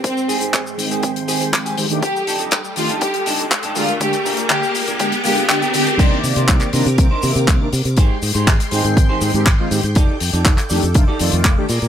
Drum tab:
CC |----------------|----------------|----------------|x---------------|
HH |x-oxx-oxxxoxxxox|x-oxx-oxxxoxxxox|xxoxx-oxxxoxxxox|x-oxxxoxx-oxx-ox|
SH |xxxxxxxxx-xxxxxx|xxxxxxxxx-xxxxxx|xxxxxxxxx-xxxxxx|x-xxxxxxx-xxx-xx|
CP |----x-------x---|----x-------x---|----x-------x---|----xx------x---|
BD |o---o---o---o---|o---o---o---o---|o---o---o---o---|o---o---o---o---|

CC |----------------|----------------|
HH |x-oxxxoxx-oxx-ox|x-oxxxoxx-oxx-ox|
SH |x-xxxxxxx-xxx-xx|x-xxxxxxx-xxx-xx|
CP |----x-------x---|----xx------x---|
BD |o---o---o---o---|o---o---o---o---|